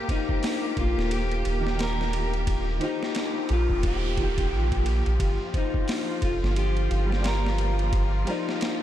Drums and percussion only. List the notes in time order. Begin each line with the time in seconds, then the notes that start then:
0.09 kick, ride
0.29 kick
0.43 snare, open hi-hat
0.77 kick, ride
0.99 snare
1.11 ride
1.32 ride
1.45 ride
1.67 snare
1.79 snare, ride
2.01 snare
2.13 ride
2.34 ride
2.47 kick, ride
2.81 ride
3.03 snare
3.15 snare, ride
3.49 ride
3.70 kick
3.83 kick, ride
4.17 kick, ride
4.38 kick, ride
4.72 kick, ride
4.86 ride
5.06 ride
5.20 kick, ride
5.54 kick, ride
5.74 kick
5.88 snare, open hi-hat
6.22 kick, ride
6.44 snare
6.56 ride
6.77 ride
6.91 ride
7.12 snare
7.24 snare, ride
7.46 snare
7.58 ride
7.79 ride
7.93 kick, ride
8.27 ride
8.49 snare
8.61 snare, ride